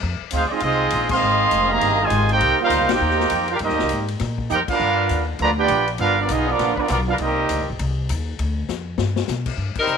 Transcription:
0.03 F2
0.21 muted upright bass stroke
0.31 D2 G#3 C4 F4 C5, hi-hat pedal, ride
0.35 D#4 G#4 F5
0.47 C4 D#4 D5
0.51 G#3 C4 F4 G#4 D#5, muted upright bass stroke
0.60 C2 G#3 C4 D#4 F4 G#4 D#5, ride
0.90 A#1, hi-hat pedal, ride
1.09 D#3 G#3 C4 G#4 D#5 F5 C6, kick, crash
1.22 G#1
1.51 F1, hi-hat pedal, ride
1.71 C3 D#3 A#3 G#4 D#5 F5 A#5
1.81 G1, ride
2.00 C3 D#3 G#3 F4
2.04 C5 D#5 G#5
2.10 G#1, hi-hat pedal, ride
2.29 A#3 D#4 G4 G5, ride
2.33 D#4 A#4 C5
2.40 C2, ride
2.61 G3 A#3 D#4 F4 A#4 C5 F5
2.70 D2, hi-hat pedal, ride
2.80 C2
2.89 A#1 A#3 D#4 G4 A#4 C5 G5, snare, ride
3.00 D#2
3.10 snare
3.20 snare
3.30 F2, hi-hat pedal, ride
3.48 F4, ride
3.53 D4 G4 A#4 F5
3.59 G2 G3 A#3 D#4 G4 A#4, ride
3.63 C4 D#5
3.69 D#2, snare
3.79 C2, snare
3.89 G#2, hi-hat pedal, ride
4.08 ride
4.19 A#2, snare, ride
4.38 kick
4.49 F2 A#3 D#4 G4 A#4 C5 G5, hi-hat pedal
4.68 B3 D4 F4 A#4 B4 F5, muted upright bass stroke, kick, crash
4.80 G2
5.09 D#2, hi-hat pedal, ride
5.39 D2 D3 F3 A#3 B4 D5 A#5, ride
5.43 F4
5.58 B3 D4 F4 G4 B4 D5 G5
5.68 A#1, hi-hat pedal, ride
5.88 ride
5.98 G1 B3 D4 F4 A#4 B4 F5, ride
6.19 F3 B3 D4 F4 A#4 D5
6.29 B1 D#4 F4 G#4 D#5, hi-hat pedal, ride
6.33 B3
6.48 F3 B3 D4 F4 A#4
6.52 B3 D5
6.59 A#1, snare, ride
6.76 F3 B3 D4 B4, muted upright bass stroke, kick
6.80 B3 F4 A#4 D5
6.88 B1 F3 B3 D4 F4 A#4 D5, hi-hat pedal, ride
7.07 B3 D4 F4 A#4 B4 F5
7.18 C2 G3 A#3 C4 D#4, ride
7.22 G4 A#4 D#5
7.49 D2, hi-hat pedal, ride
7.61 C2
7.70 A#1
7.79 C2, ride
8.09 D#2, hi-hat pedal, ride
8.39 D2, ride
8.69 F2, snare, hi-hat pedal
8.98 G2, snare
9.16 snare
9.27 B2, snare, hi-hat pedal
9.46 kick, crash
9.57 G2
9.75 G3 C4, muted upright bass stroke, kick, crash
9.80 D#4 A#4
9.87 C2, hi-hat pedal

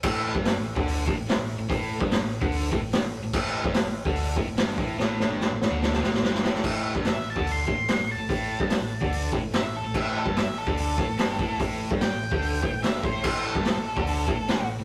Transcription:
0.03 A1 A2, kick, crash
0.35 G1 G2, kick
0.45 snare, open hi-hat
0.55 A1 A2
0.76 D2 D3, kick
0.88 open hi-hat
1.06 A1 A2, kick
1.16 A1 A2
1.27 G1 G2, snare, open hi-hat
1.37 A1 A2
1.57 A1 A2
1.69 A1 A2, kick, open hi-hat
1.99 G1 G2, kick
2.11 snare, open hi-hat
2.19 A1 A2
2.42 D2 D3, kick
2.52 open hi-hat
2.72 A1 A2, kick
2.81 A1 A2
2.91 G1 G2, snare, open hi-hat
3.02 A1 A2
3.22 A1 A2
3.33 A1 A2, kick, crash
3.64 G1 G2, kick
3.74 snare, open hi-hat
3.83 A1 A2
4.05 D2 D3, kick
4.16 open hi-hat
4.36 A1 A2, kick
4.45 A1 A2
4.55 G1 G2, snare, open hi-hat
4.78 A1 A2, kick
4.98 A1 A2, snare
5.20 snare
5.29 G1 G2
5.41 snare
5.50 A1 A2
5.62 snare
5.70 D2 D3
5.82 snare
5.93 snare
6.01 A1 A2, snare
6.11 A1 A2, snare
6.22 G1 G2, snare
6.34 snare
6.43 A1 A2, snare
6.54 snare
6.64 A1 A2, kick, crash
6.94 G1 G2, kick
7.05 snare, open hi-hat
7.09 E5
7.15 A1 A2
7.30 A5
7.36 D2 D3, kick
7.47 open hi-hat
7.52 C6
7.67 A1 A2, kick
7.77 A1 A2
7.87 G1 G2, snare, open hi-hat
7.98 A1 A2
8.12 A5
8.18 A1 A2
8.28 A1 A2, kick, open hi-hat
8.60 G1 G2, kick
8.70 snare, open hi-hat
8.79 A1 A2
9.01 D2 D3, kick
9.12 open hi-hat
9.32 A1 A2, kick
9.42 A1 A2
9.51 G1 G2, snare, open hi-hat
9.56 E5
9.61 A1 A2
9.77 A4
9.83 A1 A2
9.94 A1 A2 E5, kick, crash
10.18 A4
10.25 G1 G2, kick
10.36 E5, snare, open hi-hat
10.45 A1 A2
10.58 A4
10.67 D2 D3, kick
10.77 A4, open hi-hat
10.98 A1 A2, kick
11.07 A1 A2
11.17 G1 G2, snare, open hi-hat
11.39 A1 A2, kick
11.59 A1 A2, kick, open hi-hat
11.91 G1 G2, kick
12.01 G5, snare, open hi-hat
12.09 A1 A2
12.31 D2 D3, kick
12.42 open hi-hat
12.62 A1 A2, kick
12.71 A1 A2
12.82 G1 G2 E5, snare, open hi-hat
13.03 A1 A2 C5, kick
13.24 A1 A2 C5, kick, crash
13.46 A4
13.55 G1 G2, kick
13.65 snare, open hi-hat
13.75 A1 A2
13.96 D2 D3, kick
14.07 open hi-hat
14.28 A1 A2, kick
14.38 A1 A2
14.48 G1 G2, snare, open hi-hat
14.57 A1 A2
14.79 A1 A2

